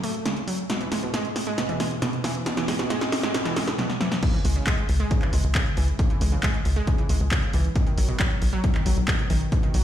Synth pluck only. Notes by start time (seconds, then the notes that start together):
0.04 A3
0.26 C#3
0.48 F#3
0.70 B2
0.81 E3
0.92 G#3
1.03 B2
1.14 G#3
1.47 G#3
1.58 B2
1.69 E3
1.80 G#3
2.02 B2
2.24 E3
2.46 B2
2.57 E3
2.68 G#3
2.79 B2
2.90 G#3
3.23 G#3
3.34 B2
3.45 E3
3.56 G#3
3.78 B2
4.01 E3
4.23 C#3
4.34 E3
4.45 G#3
4.56 C#3
4.67 G#3
5.00 G#3
5.11 C#3
5.22 E3
5.33 G#3
5.55 C#3
5.77 E3
5.99 C#3
6.10 E3
6.21 G#3
6.32 C#3
6.43 G#3
6.76 G#3
6.87 C#3
6.98 E3
7.09 G#3
7.31 C#3
7.53 E3
7.76 B2
7.87 D#3
7.98 F#3
8.09 B2
8.20 F#3
8.53 F#3
8.64 B2
8.75 D#3
8.86 F#3
9.08 B2
9.30 D#3
9.52 B2
9.63 D#3
9.74 F#3